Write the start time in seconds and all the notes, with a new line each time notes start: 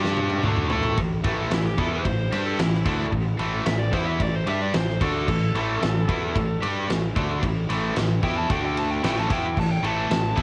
Already playing: G2 G3 D4 G4
0.04 snare
0.17 high tom
0.30 high tom
0.43 D2 D3 A3 D4, mid tom
0.56 mid tom
0.70 A2 A3 E4 A4, floor tom
0.83 floor tom
0.97 A1 A2 E3, kick, ride
1.24 A1 A2 E3 A3, kick, ride
1.50 A1 A2 E3 E4, snare, ride
1.66 G4
1.78 E2 E3 B3 E4 A4, kick, ride
1.92 C5
2.04 A1 A2 E3, kick, ride
2.32 G2 G3 D4 G4, snare, ride
2.46 A4
2.59 A1 A2 E3 E4, snare, ride
2.74 snare
2.85 D2 D3 A3 D4 E4, kick, ride
3.12 A1 A2 E3, kick, ride
3.39 A1 A2 E3 A3, ride
3.65 A1 A2 E3 E5, snare, ride
3.79 D5
3.93 E2 E3 B3 E4 C5, kick, ride
4.06 E5
4.20 A1 A2 E3 D5, kick, ride
4.35 C5
4.46 G2 G3 D4 G4 E5, ride
4.62 D5
4.73 A1 A2 E3 C5, snare, ride
4.88 snare
5.00 D2 D3 A3 D4 A4, kick, ride
5.28 A1 A2 E3, kick, crash
5.54 A1 A2 E3 A3, ride
5.81 A1 A2 E3, snare, ride
6.09 E2 E3 B3 E4, kick, ride
6.35 A1 A2 E3, kick, ride
6.62 G2 G3 D4 G4, ride
6.88 A1 A2 E3, snare, ride
7.16 D2 D3 A3 D4, kick, ride
7.42 A1 A2 E3, kick, ride
7.69 A1 A2 E3 A3, ride
7.96 A1 A2 E3, snare, ride
8.23 E2 E3 B3 E4 G5, kick, ride
8.38 A5
8.50 D2 D3 A3 D4 G5, kick, ride
8.65 G5
8.77 A5, ride
8.91 G5
9.03 A1 A2 E3 A3 G5, snare, ride
9.18 A5, snare
9.29 E2 E3 B3 E4 G5, kick, ride
9.46 G5
9.56 A1 A2 E3 A5, kick, crash
9.71 G5
9.83 A1 A2 E3 A3 A5, ride
10.09 A1 A2 E3, snare, ride
10.35 E2 E3 B3 E4, kick, ride